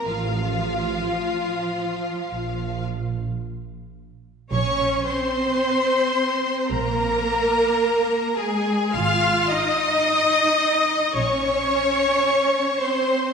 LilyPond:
<<
  \new Staff \with { instrumentName = "Violin section" } { \time 4/4 \key bes \dorian \tempo 4 = 54 f''2~ f''8 r4. | des'''8 c'''4. bes''4. aes''8 | f'''8 ees'''4. des'''4. c'''8 | }
  \new Staff \with { instrumentName = "Viola section" } { \time 4/4 \key bes \dorian f'2~ f'8 r4. | des''8 c''4. bes'4. aes'8 | f''8 ees''4. des''4. c''8 | }
  \new Staff \with { instrumentName = "Violin section" } { \time 4/4 \key bes \dorian f'2~ f'8 r4. | des''8 c''4. bes'4. aes'8 | f''8 ees''4. des''4. c''8 | }
  \new Staff \with { instrumentName = "Cello section" } { \time 4/4 \key bes \dorian f2~ f8 r4. | des'8 c'4. bes4. aes8 | f'8 ees'4. des'4. c'8 | }
  \new Staff \with { instrumentName = "Double bass section" } { \clef bass \time 4/4 \key bes \dorian a,,4 r4 bes,,4 r4 | bes,,4 r4 bes,,4 r4 | aes,,4 r4 bes,,4 r4 | }
>>